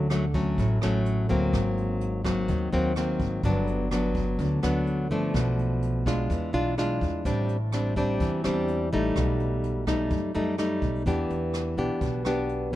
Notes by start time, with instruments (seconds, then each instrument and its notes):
Already playing: upright bass D2, nylon-string guitar D3
0.10 nylon-string guitar F#3 A3 C#4, cross-stick, closed hi-hat
0.34 nylon-string guitar F#3 A3 C#4, kick, closed hi-hat
0.58 upright bass A1, nylon-string guitar A2, kick, closed hi-hat
0.82 upright bass A1, nylon-string guitar F#3 A3 C#4, cross-stick, closed hi-hat
1.06 closed hi-hat
1.29 upright bass D2, nylon-string guitar F#3 A#3 C4, closed hi-hat
1.53 upright bass G#1, nylon-string guitar G#2, kick, cross-stick, closed hi-hat
1.77 closed hi-hat
2.01 closed hi-hat
2.25 nylon-string guitar F#3 A#3 C4, kick, cross-stick, closed hi-hat
2.48 upright bass D#2, nylon-string guitar D#3, kick, closed hi-hat
2.72 upright bass D#2, nylon-string guitar F#3 A#3 C4, closed hi-hat
2.96 nylon-string guitar F#3 A#3 C4, cross-stick, closed hi-hat
3.20 upright bass G#1, kick, closed hi-hat
3.43 upright bass G1, nylon-string guitar G2 F#3 B3 D4, kick, closed hi-hat
3.67 closed hi-hat
3.91 nylon-string guitar F#3 B3 D4, cross-stick, closed hi-hat
4.15 kick, closed hi-hat
4.39 upright bass D2, nylon-string guitar D3, kick, closed hi-hat
4.63 upright bass D2, nylon-string guitar F#3 B3 D4, cross-stick, closed hi-hat
4.87 closed hi-hat
5.11 upright bass G1, nylon-string guitar F3 A3 D4, closed hi-hat
5.34 upright bass B1, nylon-string guitar B2, kick, cross-stick, closed hi-hat
5.59 closed hi-hat
5.82 closed hi-hat
6.06 nylon-string guitar G#3 D4 F4, kick, cross-stick, closed hi-hat
6.30 upright bass E2, nylon-string guitar E3, kick, closed hi-hat
6.53 upright bass B1, nylon-string guitar G#3 D4 F4, closed hi-hat
6.78 nylon-string guitar G#3 D4 F4, cross-stick, closed hi-hat
7.01 upright bass E2, kick, closed hi-hat
7.25 upright bass A1, nylon-string guitar A2 G3 C4 D4, kick, closed hi-hat
7.49 closed hi-hat
7.72 nylon-string guitar G3 C4 D4, cross-stick, closed hi-hat
7.96 nylon-string guitar G3 C4 D4, kick, closed hi-hat
8.20 upright bass E2, nylon-string guitar E3, kick, closed hi-hat
8.44 upright bass E2, nylon-string guitar G3 C4 D4, cross-stick, closed hi-hat
8.68 closed hi-hat
8.92 upright bass A1, nylon-string guitar G3 A3 D#4, closed hi-hat
9.16 upright bass B1, nylon-string guitar B2, kick, cross-stick, closed hi-hat
9.40 closed hi-hat
9.64 closed hi-hat
9.87 nylon-string guitar G3 A3 D#4, kick, cross-stick, closed hi-hat
10.10 upright bass F#2, kick, closed hi-hat
10.35 upright bass F#2, nylon-string guitar G3 A3 D#4, closed hi-hat
10.58 nylon-string guitar G3 A3 D#4, cross-stick, closed hi-hat
10.82 upright bass B1, kick, closed hi-hat
11.06 upright bass E2, nylon-string guitar E3 B3 D4 G4, kick, closed hi-hat
11.30 upright bass E2, closed hi-hat
11.54 cross-stick, closed hi-hat
11.77 upright bass B1, nylon-string guitar B3 D4 G4, kick, closed hi-hat
12.01 upright bass B1, nylon-string guitar B2, kick, closed hi-hat
12.25 nylon-string guitar B3 D4 G4, cross-stick, closed hi-hat
12.49 closed hi-hat